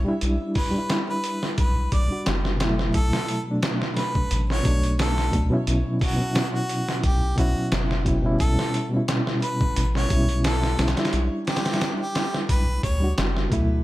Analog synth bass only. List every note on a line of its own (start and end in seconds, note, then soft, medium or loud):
0.22 0.38 B1 loud
1.58 1.89 B1 medium
1.93 2.09 B1 loud
2.27 2.92 F#1 medium
2.95 3.11 B1 loud
4.32 4.62 A1 medium
4.65 5.30 B1 medium
5.33 5.50 D2 medium
5.68 5.84 B1 loud
7.04 7.34 B1 medium
7.38 7.54 B1 medium
7.72 8.37 F#1 medium
8.41 8.57 B1 loud
9.77 10.07 A1 medium
10.11 10.76 B1 medium
10.79 10.95 B1 medium
11.13 11.29 B1 loud
12.50 12.80 B1 medium
12.84 13.14 D2 medium
13.18 13.48 F#1 loud
13.52 13.82 D2 medium